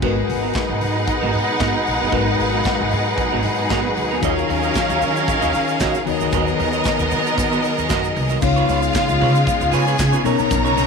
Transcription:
0.02 upright bass G#1, string section B2 F#3 G#3 D#4 G#4 B4 F#5, tine electric piano G#3 D#4 F#4 A#4 B4, clean electric guitar B3 F#4 A#4, kick, crash
0.17 muted clean electric guitar stroke
0.29 upright bass G#1, muted clean electric guitar stroke, open hi-hat
0.43 clean electric guitar B3 F#4 A#4
0.54 kick, snare, clap, closed hi-hat
0.69 upright bass G#1, muted clean electric guitar stroke
0.81 upright bass G#2, open hi-hat
0.95 muted clean electric guitar stroke
1.08 muted clean electric guitar stroke, kick, closed hi-hat
1.21 upright bass G#1, clean electric guitar B3 F#4 A#4
1.33 upright bass G#2, open hi-hat
1.48 muted clean electric guitar stroke
1.60 upright bass G#2, clean electric guitar B3 F#4 A#4, kick, snare, clap, closed hi-hat
1.74 muted clean electric guitar stroke
1.87 upright bass A#1, muted clean electric guitar stroke, open hi-hat
2.00 upright bass G1, clean electric guitar B3 F#4 A#4
2.11 upright bass G#1, tine electric piano G#3 D#4 F#4 A#4 B4, clean electric guitar B3 F#4 A#4, kick, closed hi-hat
2.27 muted clean electric guitar stroke
2.39 upright bass G#1, muted clean electric guitar stroke, open hi-hat
2.52 clean electric guitar B3 F#4 A#4
2.64 kick, snare, clap, closed hi-hat
2.79 upright bass G#1, muted clean electric guitar stroke
2.91 upright bass G#2, open hi-hat
3.05 muted clean electric guitar stroke
3.17 muted clean electric guitar stroke, kick, closed hi-hat
3.32 upright bass G#1, clean electric guitar B3 F#4 A#4
3.43 upright bass G#2, open hi-hat
3.58 muted clean electric guitar stroke
3.69 upright bass G#2, clean electric guitar B3 F#4 A#4, kick, snare, clap, closed hi-hat
3.84 muted clean electric guitar stroke
3.97 upright bass D2, muted clean electric guitar stroke, open hi-hat
4.11 clean electric guitar B3 F#4 A#4
4.21 upright bass D#2, tine electric piano D#3 D#4 F4 F#4 C#5, string section D#3 C#4 A#4 F5, clean electric guitar F#4 C#5 D#5, kick, closed hi-hat, shaker
4.37 muted clean electric guitar stroke, shaker
4.49 upright bass D#2, muted clean electric guitar stroke, open hi-hat
4.63 clean electric guitar F#4 C#5 D#5, shaker
4.74 kick, snare, clap, closed hi-hat, shaker
4.89 upright bass D#2, muted clean electric guitar stroke, shaker
5.02 upright bass D#3, open hi-hat, shaker
5.16 muted clean electric guitar stroke, shaker
5.28 muted clean electric guitar stroke, kick, closed hi-hat, shaker
5.42 upright bass D#2, clean electric guitar F#4 C#5 D#5, shaker
5.53 upright bass D#3, muted clean electric guitar stroke, open hi-hat, shaker
5.68 muted clean electric guitar stroke, shaker
5.80 upright bass D#3, clean electric guitar F#4 C#5 D#5, kick, snare, clap, closed hi-hat, shaker
5.94 muted clean electric guitar stroke, shaker
6.06 upright bass D#2, tine electric piano D#3 D#4 F#4 A#4 C#5, string section D#3 B3 A#4 D#5, muted clean electric guitar stroke, open hi-hat
6.20 upright bass D2, clean electric guitar F#4 A#4 D#5, shaker
6.32 upright bass D#2, clean electric guitar F#4 A#4 D#5, kick, closed hi-hat, shaker
6.47 muted clean electric guitar stroke, shaker
6.60 upright bass D#2, muted clean electric guitar stroke, open hi-hat
6.73 clean electric guitar F#4 A#4 D#5, shaker
6.84 muted clean electric guitar stroke, kick, snare, clap, closed hi-hat, shaker
6.99 upright bass D#2, muted clean electric guitar stroke, shaker
7.11 upright bass D#3, open hi-hat, shaker
7.26 muted clean electric guitar stroke, shaker
7.38 upright bass D#3, muted clean electric guitar stroke, kick, closed hi-hat, shaker
7.51 clean electric guitar F#4 A#4 D#5, shaker
7.62 muted clean electric guitar stroke, open hi-hat, shaker
7.78 upright bass D#2, muted clean electric guitar stroke, shaker
7.89 upright bass F#2, clean electric guitar F#4 A#4 D#5, kick, snare, clap, closed hi-hat, shaker
8.04 muted clean electric guitar stroke, shaker
8.16 upright bass C2, muted clean electric guitar stroke, open hi-hat
8.29 clean electric guitar F#4 A#4 D#5, shaker
8.41 upright bass C#2, tine electric piano C#3 B3 D#4 F4 C#5, string section C#3 G#3 B3 F4 F5, muted clean electric guitar stroke, kick, crash, shaker
8.56 clean electric guitar F4 B4 C#5, shaker
8.69 upright bass C#2, clean electric guitar F4 B4 C#5, open hi-hat, shaker
8.83 muted clean electric guitar stroke, shaker
8.93 kick, snare, clap, closed hi-hat, shaker
9.09 upright bass C#2, muted clean electric guitar stroke, shaker
9.21 upright bass C#3, clean electric guitar F4 B4 C#5, open hi-hat
9.35 muted clean electric guitar stroke, shaker
9.47 muted clean electric guitar stroke, kick, closed hi-hat, shaker
9.61 upright bass C#2, muted clean electric guitar stroke, shaker
9.72 upright bass C#3, clean electric guitar F4 B4 C#5, string section G#4 G#5, open hi-hat, shaker
9.87 clean electric guitar F4 B4 C#5, shaker
9.99 upright bass C#3, muted clean electric guitar stroke, kick, snare, clap, closed hi-hat, shaker
10.12 clean electric guitar F4 B4 C#5, shaker
10.23 upright bass B1, tine electric piano B2 B3 D#4 A#4 C#5, string section C#4 D#4 A#4 A#5, clean electric guitar D#4 A#4 C#5, open hi-hat, shaker
10.39 upright bass A#1, shaker
10.51 upright bass B1, muted clean electric guitar stroke, kick, closed hi-hat, shaker
10.65 clean electric guitar D#4 A#4 C#5, shaker
10.76 upright bass B1, clean electric guitar D#4 A#4 C#5, open hi-hat, shaker

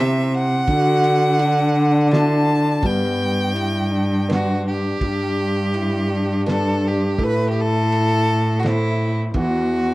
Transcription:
Already playing: upright piano C3 E4 G4 C5, cello C3, french horn E4
0.00 violin E5
0.34 violin F#5
0.67 cello D3, upright piano D3, french horn F#4, kick, ride
1.04 ride
1.39 french horn D4, ride
2.11 upright piano D4 E4 F#4, violin A5, snare, ride
2.82 cello G2, upright piano G3, french horn B3, violin G5, kick, ride
3.54 french horn E4, ride
3.93 french horn D4
4.28 upright piano D4 B4, french horn D4, snare, ride
4.33 violin F#4
4.68 violin G4
5.01 cello G2, upright piano G3, french horn D4, kick, ride
5.74 french horn E4, ride
6.10 french horn D4
6.46 upright piano D4 G4 B4, violin A4, snare, ride
6.87 violin G4
7.18 cello A2, upright piano A3, french horn E4, kick, ride
7.23 violin B4
7.50 violin G4
7.61 violin A4
7.92 ride
8.60 violin F#4, ride
8.64 upright piano E4 A4 C5, violin E4, snare
9.34 cello E2, upright piano E3, french horn F#4, violin F#4, kick, ride

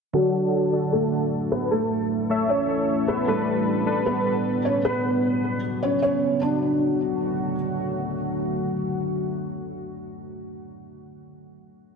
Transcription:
0.13 ambient pad A2 F#3 D4 F#4, synth keys D3 D4 F#4 A4, felt piano F#3 F#4
0.72 synth keys D3 D4 F#4 A4
0.92 felt piano A3 A4
1.12 synth keys D3 D4 F#4 A4
1.52 felt piano B3 B4
1.71 ambient pad E3 C#4 E4, felt piano A3 A4
2.29 synth keys A3 A4 C#5 E5
2.49 felt piano C#4 C#5
2.68 synth keys A3 A4 C#5 E5
3.07 synth keys A3 A4 C#5 E5, felt piano B3 B4
3.27 synth keys G3 D4 A4 B4, ambient pad G3 B3 D4, felt piano A3 A4
3.86 synth keys G3 D4 A4 B4
4.06 felt piano B3 B4
4.26 synth keys G3 D4 A4 B4
4.65 felt piano C#4 C#5
4.85 ambient pad C#3 F#3 F#4, felt piano B3 B4
5.83 felt piano C#4 C#5
6.02 felt piano C#4 C#5
6.41 ambient pad D3 F#3 A3 F#4, felt piano D4

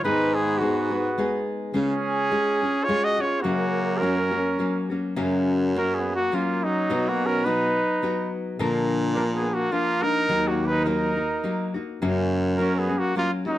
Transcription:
0.04 nylon-string guitar G#2 D#3 G#3 B3 D#4 G#4, baritone saxophone G#2, trumpet D#4 B4
0.34 trumpet B3 G#4
0.58 nylon-string guitar G#3, trumpet F#4
0.62 nylon-string guitar B3 D#4 G#4, trumpet B3
0.91 nylon-string guitar G#3 B3 D#4 G#4
1.18 nylon-string guitar G#3 B3 D#4 G#4
1.74 nylon-string guitar C#3 G#3 C#4 F4 G#4, baritone saxophone C#3, trumpet C#4 G#4
2.31 nylon-string guitar G#3 C#4 F4 G#4
2.62 nylon-string guitar C#4 F4 G#4
2.84 trumpet F4 C#5
2.89 nylon-string guitar G#3 C#4 F4 G#4
3.03 trumpet F#4 D#5
3.19 nylon-string guitar C#4 F4 G#4, trumpet C#5
3.24 trumpet F4
3.41 nylon-string guitar F#2 C#3 F#3 A#3 F#4, baritone saxophone F#2, trumpet A#3 F#4
3.45 nylon-string guitar C#4
3.98 trumpet A#4
4.02 nylon-string guitar F#3 A#3 C#4 F#4, trumpet C#4
4.31 nylon-string guitar F#3 A#3 C#4 F#4
4.59 nylon-string guitar F#3 A#3 C#4 F#4
4.90 nylon-string guitar F#3 A#3 C#4 F#4
5.16 nylon-string guitar F#2 C#3 F#3 A#3 C#4 F#4, baritone saxophone F#2
5.75 nylon-string guitar F#3 A#3 C#4 F#4, trumpet C#4 A#4
5.94 trumpet G#4
5.99 trumpet B3
6.15 trumpet A#3 F#4
6.32 nylon-string guitar F#3 A#3 C#4 F#4, trumpet A#3 F4
6.64 trumpet F#3 D#4
6.89 baritone saxophone B2, nylon-string guitar B2 F#3 B3 D#4 F#4
7.08 trumpet A#3 F#4
7.25 trumpet C#4 A#4
7.44 nylon-string guitar F#3 B3 D#4 F#4, trumpet D#4 B4
8.02 nylon-string guitar F#3 B3 D#4 F#4
8.58 baritone saxophone A#2, nylon-string guitar A#2 D3 F3 A#3 D4 A#4
9.13 nylon-string guitar F3 A#3 D4 A#4, trumpet D4 A#4
9.34 trumpet B3 G#4
9.53 trumpet A#3 F#4
9.72 nylon-string guitar F3 A#3 D4 A#4, trumpet A#3 F4
10.02 nylon-string guitar F3 A#3 D4 A#4, trumpet D#4 A#4
10.28 baritone saxophone D#2, nylon-string guitar D#3 F#3 A#3 D#4 F#4
10.48 trumpet A#3 F#4
10.66 trumpet D#4 B4
10.85 nylon-string guitar F#3 A#3 D#4 F#4, trumpet A#4
10.89 trumpet D#4
11.17 nylon-string guitar A#3 D#4 F#4
11.44 nylon-string guitar F#3 A#3 D#4 F#4
11.74 nylon-string guitar A#3 D#4 F#4
12.01 baritone saxophone F#2, nylon-string guitar F#2 C#3 F#3 A#3 C#4 F#4
12.56 nylon-string guitar F#3 A#3, trumpet A#4
12.61 trumpet C#4, nylon-string guitar C#4 F#4
12.79 trumpet B3 G#4
12.89 nylon-string guitar F#3 A#3 C#4 F#4
12.98 trumpet A#3 F#4
13.15 nylon-string guitar F#3 A#3 C#4 F#4, trumpet A#3 F4
13.46 nylon-string guitar F#3 A#3 C#4 F#4, trumpet F#3 D#4

